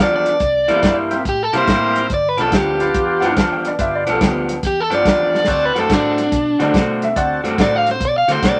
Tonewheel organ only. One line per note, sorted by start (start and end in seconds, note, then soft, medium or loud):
1.10 1.24 A#3 medium
1.10 1.24 C4 medium
1.10 1.24 E4 medium
1.10 1.24 G4 medium
1.53 2.07 C4 medium
1.53 2.07 E4 medium
1.53 2.07 G4 medium
1.53 2.07 A#4 medium
2.80 3.34 B3 medium
2.80 3.34 D4 medium
2.80 3.34 F4 medium
2.80 3.34 G4 medium
3.79 4.04 B3 medium
3.79 4.04 D4 medium
3.79 4.04 F4 soft
3.79 4.04 G4 medium
5.47 5.73 C4 medium
5.47 5.73 D4 medium
5.47 5.73 F#4 medium
5.47 5.73 A4 medium
7.16 7.41 C4 medium
7.16 7.41 D4 medium
7.16 7.41 F#4 medium
7.16 7.41 A4 medium